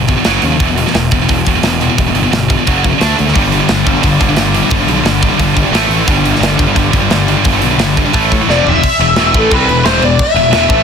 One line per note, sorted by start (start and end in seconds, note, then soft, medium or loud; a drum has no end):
0.00 0.16 G1 medium
0.08 0.16 E2 medium
0.08 0.16 B2 medium
0.08 kick medium
0.08 open hi-hat medium
0.17 0.24 E2 medium
0.17 0.25 B2 medium
0.25 0.38 F#1 medium
0.25 0.42 F#2 medium
0.25 0.42 C#3 medium
0.25 0.42 F#3 medium
0.25 snare loud
0.25 open hi-hat medium
0.42 0.55 D#2 medium
0.42 0.50 F#2 medium
0.42 0.49 C#3 medium
0.42 open hi-hat medium
0.51 0.59 F#2 medium
0.51 0.59 C#3 medium
0.60 0.84 E1 medium
0.60 0.68 E2 medium
0.60 0.68 B2 medium
0.60 0.68 E3 medium
0.60 kick loud
0.60 open hi-hat medium
0.69 0.76 E2 medium
0.69 0.76 B2 medium
0.77 0.85 E2 medium
0.77 0.85 B2 medium
0.77 open hi-hat medium
0.86 0.95 E2 medium
0.86 0.95 B2 medium
0.86 snare soft
0.95 1.07 E1 medium
0.95 1.11 E2 medium
0.95 1.11 B2 medium
0.95 snare loud
0.95 open hi-hat medium
1.11 1.24 E1 medium
1.11 1.20 E2 medium
1.11 1.20 B2 medium
1.11 kick medium
1.11 open hi-hat medium
1.21 1.27 E2 medium
1.21 1.28 B2 medium
1.28 1.41 E1 medium
1.28 1.44 E2 medium
1.28 1.44 B2 medium
1.28 kick medium
1.28 open hi-hat medium
1.45 1.59 E1 medium
1.45 1.54 E2 medium
1.45 1.54 B2 medium
1.45 kick medium
1.45 open hi-hat medium
1.55 1.63 E2 medium
1.55 1.62 B2 medium
1.63 1.88 E1 medium
1.63 1.79 E2 medium
1.63 1.79 B2 medium
1.63 snare medium
1.63 open hi-hat medium
1.81 1.88 E2 medium
1.81 1.88 B2 medium
1.81 open hi-hat medium
1.90 1.97 E2 medium
1.90 1.98 B2 medium
1.98 2.11 E1 loud
1.98 2.07 E2 medium
1.98 2.06 B2 medium
1.98 kick loud
1.98 open hi-hat medium
2.07 2.15 E2 medium
2.07 2.14 B2 medium
2.14 2.27 G1 medium
2.14 2.24 E2 medium
2.14 2.23 B2 medium
2.14 open hi-hat medium
2.24 2.31 E2 medium
2.24 2.31 B2 medium
2.31 2.56 G1 medium
2.31 2.48 E2 medium
2.31 2.48 B2 medium
2.31 snare loud
2.31 open hi-hat medium
2.50 2.57 E2 medium
2.50 2.58 B2 medium
2.50 kick medium
2.50 open hi-hat medium
2.59 2.67 E2 medium
2.59 2.67 B2 medium
2.67 2.91 F#1 medium
2.67 2.83 F#2 medium
2.67 2.84 C#3 medium
2.67 2.84 F#3 loud
2.67 kick medium
2.67 open hi-hat medium
2.84 2.92 F#2 medium
2.84 2.92 C#3 medium
2.84 kick medium
2.84 open hi-hat soft
2.93 3.01 F#2 medium
2.93 3.00 C#3 medium
3.01 3.13 D2 medium
3.01 3.17 D3 medium
3.01 3.17 A3 medium
3.01 3.18 D4 medium
3.01 snare medium
3.01 open hi-hat medium
3.19 3.31 D2 medium
3.19 3.27 D3 medium
3.19 3.26 A3 medium
3.19 open hi-hat medium
3.27 3.35 D3 medium
3.27 3.36 A3 medium
3.27 snare soft
3.35 3.60 G1 loud
3.35 3.43 G2 medium
3.35 3.43 D3 medium
3.35 3.44 G3 medium
3.35 kick loud
3.35 open hi-hat medium
3.45 3.53 G2 medium
3.45 3.52 D3 medium
3.52 3.60 G2 medium
3.52 3.59 D3 medium
3.52 open hi-hat medium
3.61 3.69 G2 medium
3.61 3.69 D3 medium
3.69 3.82 G1 medium
3.69 3.85 G2 medium
3.69 3.85 D3 medium
3.69 snare loud
3.69 open hi-hat medium
3.86 3.98 G1 medium
3.86 3.95 G2 medium
3.86 3.94 D3 medium
3.86 kick medium
3.86 open hi-hat medium
3.95 4.02 G2 medium
3.95 4.02 D3 medium
4.03 4.16 G1 medium
4.03 4.19 G2 medium
4.03 4.19 D3 medium
4.03 4.72 G3 medium
4.03 kick medium
4.03 open hi-hat medium
4.20 4.33 G1 medium
4.20 4.28 G2 medium
4.20 4.28 D3 medium
4.20 kick medium
4.20 open hi-hat medium
4.29 4.38 G2 medium
4.29 4.38 D3 medium
4.36 4.61 G1 medium
4.36 4.55 G2 medium
4.36 4.54 D3 medium
4.36 snare medium
4.36 open hi-hat medium
4.54 4.63 G2 medium
4.54 4.64 D3 medium
4.54 open hi-hat medium
4.64 4.71 G2 medium
4.64 4.71 D3 medium
4.70 4.83 G1 medium
4.70 4.79 G2 medium
4.70 4.79 D3 medium
4.70 5.41 G3 loud
4.70 kick loud
4.70 open hi-hat medium
4.80 4.88 G2 medium
4.80 4.88 D3 medium
4.87 5.00 B1 medium
4.87 4.96 G2 medium
4.87 4.96 D3 medium
4.87 open hi-hat medium
4.97 5.04 G2 medium
4.97 5.04 D3 medium
5.05 5.30 G1 medium
5.05 5.22 G2 medium
5.05 5.21 D3 medium
5.05 snare loud
5.05 open hi-hat medium
5.22 5.30 G2 medium
5.22 5.29 D3 medium
5.22 kick medium
5.22 open hi-hat medium
5.30 5.39 G2 medium
5.30 5.38 D3 medium
5.39 5.64 G1 medium
5.39 5.55 G2 medium
5.39 5.55 D3 medium
5.39 5.73 G3 medium
5.39 kick medium
5.39 open hi-hat medium
5.56 5.65 G2 medium
5.56 5.63 D3 medium
5.56 kick medium
5.56 open hi-hat medium
5.65 5.75 G2 medium
5.65 5.72 D3 medium
5.72 5.85 A1 medium
5.72 5.90 A2 medium
5.72 5.89 E3 medium
5.72 5.90 A3 medium
5.72 snare medium
5.72 open hi-hat medium
5.89 6.02 A1 medium
5.89 5.98 A2 medium
5.89 5.97 E3 medium
5.89 open hi-hat soft
5.98 6.07 A2 medium
5.98 6.08 E3 medium
6.07 6.32 G1 loud
6.07 6.13 G2 medium
6.07 6.13 D3 medium
6.07 6.16 G3 medium
6.07 kick loud
6.07 open hi-hat medium
6.14 6.23 G2 medium
6.14 6.23 D3 medium
6.24 6.33 G2 medium
6.24 6.32 D3 medium
6.24 open hi-hat medium
6.34 6.41 G2 medium
6.34 6.41 D3 medium
6.34 snare soft
6.40 6.54 G1 medium
6.40 6.58 G2 medium
6.40 6.58 D3 medium
6.40 snare loud
6.40 open hi-hat medium
6.59 6.71 G1 medium
6.59 6.65 G2 medium
6.59 6.65 D3 medium
6.59 kick medium
6.59 open hi-hat medium
6.66 6.74 G2 medium
6.66 6.73 D3 medium
6.74 6.89 G1 medium
6.74 6.92 G2 medium
6.74 6.92 D3 medium
6.74 kick medium
6.74 open hi-hat medium
6.79 7.46 G3 medium
6.93 7.06 G1 medium
6.93 7.00 G2 medium
6.93 6.99 D3 medium
6.93 kick medium
6.93 open hi-hat medium
7.00 7.09 G2 medium
7.00 7.09 D3 medium
7.10 7.35 G1 medium
7.10 7.26 G2 medium
7.10 7.26 D3 medium
7.10 snare loud
7.10 open hi-hat medium
7.27 7.34 G2 medium
7.27 7.34 D3 medium
7.27 open hi-hat medium
7.35 7.43 G2 medium
7.35 7.43 D3 medium
7.44 7.58 G1 medium
7.44 7.52 G2 medium
7.44 7.51 D3 medium
7.44 8.14 G3 medium
7.44 kick loud
7.44 open hi-hat medium
7.52 7.60 G2 medium
7.52 7.60 D3 medium
7.61 7.74 B1 medium
7.61 7.70 G2 medium
7.61 7.70 D3 medium
7.61 open hi-hat medium
7.71 7.77 G2 medium
7.71 7.78 D3 medium
7.78 8.03 G1 medium
7.78 7.95 G2 medium
7.78 7.95 D3 medium
7.78 snare loud
7.78 open hi-hat medium
7.97 8.05 G2 medium
7.97 8.04 D3 medium
7.97 kick medium
7.97 open hi-hat medium
8.05 8.14 G2 medium
8.05 8.13 D3 medium
8.13 8.38 A1 medium
8.13 8.30 A2 medium
8.13 8.30 E3 medium
8.13 8.31 A3 loud
8.13 kick medium
8.13 open hi-hat medium
8.32 8.41 A2 medium
8.32 8.40 E3 medium
8.32 kick medium
8.32 open hi-hat medium
8.41 8.50 A2 medium
8.41 8.49 E3 medium
8.47 8.60 F1 medium
8.47 8.65 F2 medium
8.47 8.66 C3 medium
8.47 8.65 F3 medium
8.47 8.68 D5 loud
8.47 snare soft
8.64 8.77 F1 medium
8.64 8.75 F2 medium
8.64 8.74 C3 medium
8.64 floor tom medium
8.68 9.37 E5 loud
8.75 8.84 F2 medium
8.75 8.83 C3 medium
8.84 kick loud
8.84 crash loud
8.84 crash medium
8.99 9.15 E1 medium
8.99 9.14 E2 medium
8.99 9.14 B2 medium
8.99 crash medium
9.16 9.32 E1 loud
9.16 9.34 E2 loud
9.16 9.35 B2 loud
9.16 9.34 E3 loud
9.16 snare loud
9.16 crash medium
9.34 9.50 A1 loud
9.34 9.51 A2 medium
9.34 9.51 E3 loud
9.34 9.52 A3 loud
9.34 kick loud
9.34 crash medium
9.38 9.54 A4 medium
9.51 9.67 C2 loud
9.51 9.68 C3 loud
9.51 9.69 G3 loud
9.51 9.69 C4 loud
9.51 9.85 B4 medium
9.51 kick loud
9.51 crash loud
9.68 9.84 E1 medium
9.68 9.83 E2 medium
9.68 9.83 B2 medium
9.68 crash medium
9.85 10.01 E1 loud
9.85 10.01 E2 loud
9.85 10.02 B2 loud
9.85 10.02 E3 loud
9.85 10.03 C5 loud
9.85 snare loud
9.85 crash medium
10.01 10.18 E1 loud
10.01 10.16 E2 medium
10.01 10.16 B2 medium
10.01 10.21 D5 loud
10.01 crash medium
10.19 10.83 E5 medium
10.19 kick loud
10.19 crash loud
10.34 10.49 E1 medium
10.34 10.50 E2 medium
10.34 10.50 B2 medium
10.34 crash medium
10.50 10.67 E1 medium
10.50 snare loud
10.50 crash loud
10.54 10.70 E2 medium
10.54 10.70 B2 loud
10.54 10.71 E3 medium
10.69 10.83 A1 loud
10.69 10.83 A2 loud
10.69 10.83 E3 loud
10.69 10.83 A3 loud
10.69 kick loud
10.69 crash medium